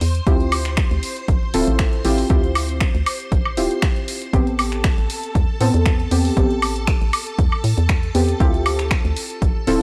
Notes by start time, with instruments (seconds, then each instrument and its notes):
Already playing: string machine C5 C6
0.01 fm bass E2, open hi-hat
0.15 closed hi-hat
0.27 fm bass D2, synth stab C4 E4 F4 G4, kick, closed hi-hat
0.40 closed hi-hat
0.52 open hi-hat, high woodblock
0.65 finger snap
0.77 finger snap, kick, closed hi-hat
0.91 fm bass D2, closed hi-hat
1.03 open hi-hat
1.16 closed hi-hat
1.28 fm bass A1, kick, closed hi-hat
1.54 fm bass D1, synth stab C4 E4 F4 A4, open hi-hat
1.67 fm bass A1, closed hi-hat
1.79 finger snap, kick, closed hi-hat
1.93 closed hi-hat
2.05 fm bass A1, synth stab C4 E4 F4 G4, open hi-hat
2.18 open hi-hat
2.30 fm bass D2, synth stab C4 E4 F4 G4, kick, closed hi-hat
2.44 closed hi-hat
2.55 open hi-hat, high woodblock
2.69 closed hi-hat
2.81 finger snap, kick, closed hi-hat
2.95 fm bass D2, closed hi-hat
3.06 open hi-hat, high woodblock
3.20 closed hi-hat
3.32 fm bass A1, kick, closed hi-hat
3.45 high woodblock
3.57 fm bass D1, synth stab C4 E4 F4 G4, open hi-hat
3.71 closed hi-hat
3.82 finger snap, kick, closed hi-hat
3.96 closed hi-hat
4.08 open hi-hat
4.22 closed hi-hat
4.33 fm bass A1, synth stab B3 C4 G4, string machine A4 A5, kick, closed hi-hat
4.47 closed hi-hat
4.59 open hi-hat, high woodblock
4.72 finger snap, closed hi-hat
4.84 finger snap, kick, closed hi-hat
4.98 fm bass A1, closed hi-hat
5.10 open hi-hat
5.23 closed hi-hat
5.35 fm bass E2, kick, closed hi-hat
5.61 fm bass A2, synth stab B3 C4 A4, open hi-hat
5.74 fm bass E2, closed hi-hat
5.86 finger snap, kick, closed hi-hat
6.00 closed hi-hat
6.11 fm bass E2, synth stab B3 C4 G4, open hi-hat
6.25 open hi-hat
6.37 fm bass A1, synth stab B3 C4 G4, kick, closed hi-hat
6.51 closed hi-hat
6.62 open hi-hat, high woodblock
6.76 closed hi-hat
6.87 finger snap, kick, closed hi-hat
7.01 fm bass A1, closed hi-hat
7.13 open hi-hat, high woodblock
7.27 closed hi-hat
7.39 fm bass E2, kick, closed hi-hat
7.52 high woodblock
7.64 fm bass A2, open hi-hat
7.78 fm bass E2, closed hi-hat
7.89 finger snap, kick, closed hi-hat
8.03 closed hi-hat
8.15 fm bass E2, synth stab B3 C4 G4, open hi-hat
8.29 closed hi-hat
8.40 fm bass D2, synth stab C4 E4 F4 G4, kick, closed hi-hat
8.54 closed hi-hat
8.66 open hi-hat, high woodblock
8.79 finger snap, closed hi-hat
8.91 finger snap, kick, closed hi-hat
9.05 fm bass D2, closed hi-hat
9.16 open hi-hat
9.30 closed hi-hat
9.42 fm bass A1, kick, closed hi-hat
9.67 fm bass D1, synth stab C4 E4 F4 A4, open hi-hat